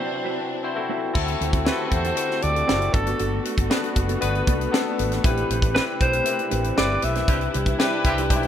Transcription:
Already playing: C3 F#3 C4 D4 E4 F#4 B4 C5
0.00 C4 F#4 B4
0.12 muted clean electric guitar stroke
0.24 C4 F#4 B4
0.37 C4 F#4 B4
0.51 muted clean electric guitar stroke
0.63 C4 E4 F#4 C5
0.75 C4 E4 F#4 A4, muted clean electric guitar stroke
0.89 C4 F#4 B4
1.02 muted clean electric guitar stroke
1.14 D2 D3 A3 C4 E4 F#4 A4, kick, crash
1.28 closed hi-hat
1.41 D2 C4 F#4 B4, closed hi-hat
1.53 C4 F#4 A4, kick, closed hi-hat
1.65 C4 E4 F#4 G4 A4 B4, snare
1.72 A4
1.79 muted clean electric guitar stroke
1.86 B4
1.91 E2 C5, muted clean electric guitar stroke, kick, closed hi-hat
2.04 C4 F#4 A4, closed hi-hat
2.16 C4 E4 F#4 A4, muted clean electric guitar stroke, closed hi-hat
2.29 muted clean electric guitar stroke, snare
2.42 D2 D5, closed hi-hat
2.55 muted clean electric guitar stroke, closed hi-hat
2.67 F#1 C4 E4 F#4 A4, snare
2.81 muted clean electric guitar stroke, closed hi-hat
2.93 G1 G3 B3 D4 F#4 A4, muted clean electric guitar stroke, kick, closed hi-hat
3.06 B3 F#4 B4, closed hi-hat
3.18 G1 B3 F#4 A4, closed hi-hat
3.44 B3 F#4 B4, closed hi-hat
3.57 G1 B3 F#4 A4, kick, closed hi-hat
3.70 B3 D4 F#4 A4 B4, snare
3.83 muted clean electric guitar stroke, closed hi-hat
3.96 F#1, muted clean electric guitar stroke, kick, closed hi-hat
4.08 B3 F#4 A4, closed hi-hat
4.21 G1 B3 D4 F#4 B4, muted clean electric guitar stroke, closed hi-hat
4.34 muted clean electric guitar stroke, closed hi-hat
4.47 C2 B3 F#4 A4, kick, closed hi-hat
4.60 B3 F#4 A4, closed hi-hat
4.72 B3 D4 F#4 A4, snare
4.85 muted clean electric guitar stroke
4.98 G#1, muted clean electric guitar stroke, closed hi-hat
5.12 B3 F#4 B4, snare, closed hi-hat
5.24 A1 C3 C4 E4 G4 B4, kick, closed hi-hat
5.37 closed hi-hat
5.49 A1 C4 G4 C5, closed hi-hat
5.62 C4 G4 B4, kick, closed hi-hat
5.74 C4 E4 G4 B4, snare
5.88 muted clean electric guitar stroke
6.00 B1 C5, muted clean electric guitar stroke, kick, closed hi-hat
6.12 C4 G4 B4, closed hi-hat
6.25 C4 E4 G4 A#4, muted clean electric guitar stroke, closed hi-hat
6.33 B4
6.38 muted clean electric guitar stroke, closed hi-hat
6.51 A1 C4 G4 B4, closed hi-hat
6.63 C4 G4 B4, closed hi-hat
6.77 G1 C4 E4 G4 B4 D5, snare
6.90 muted clean electric guitar stroke
7.02 B1 E5, muted clean electric guitar stroke, closed hi-hat
7.15 C4 G4 C5, snare, closed hi-hat
7.28 C2 G3 C4 D4 E4 G4 B4, kick, closed hi-hat
7.41 closed hi-hat
7.53 C2 E4 G4 C5, closed hi-hat
7.66 E4 G4 B4, kick, closed hi-hat
7.78 D4 E4 G4 B4, snare
7.91 muted clean electric guitar stroke
8.04 C2 C4 E4 G4, muted clean electric guitar stroke, kick, closed hi-hat
8.18 E4 G4 B4, closed hi-hat
8.30 B1 D4 D#4 G4 C5, muted clean electric guitar stroke, kick, closed hi-hat
8.36 E4
8.43 muted clean electric guitar stroke, closed hi-hat

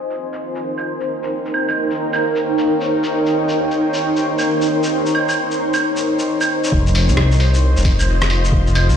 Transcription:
Already playing: D#4 F4 A#4 C5
0.10 shaker
0.32 G5, shaker
0.55 C#5, shaker
0.78 claves, shaker
1.01 shaker
1.12 F5
1.23 shaker
1.46 shaker
1.54 claves
1.69 claves, shaker
1.91 shaker
2.13 claves, shaker
2.36 shaker
2.58 shaker
2.81 shaker
3.04 shaker
3.26 shaker
3.49 shaker
3.71 shaker
3.94 shaker
4.17 shaker
4.26 D#5
4.39 claves, shaker
4.62 shaker
4.83 shaker
5.06 shaker
5.15 claves
5.29 claves, shaker
5.51 shaker
5.74 claves, shaker
5.97 shaker
6.19 shaker
6.41 claves, shaker
6.64 shaker
6.71 F1 F4, kick
6.87 shaker
6.95 open hi-hat
7.09 C2, shaker
7.17 cross-stick
7.32 shaker
7.40 open hi-hat
7.54 shaker
7.76 F1, shaker
7.85 kick, open hi-hat
7.99 claves, shaker
8.22 cross-stick, shaker
8.30 open hi-hat
8.45 shaker
8.52 F1, kick
8.67 shaker
8.75 open hi-hat, claves
8.89 C2, shaker

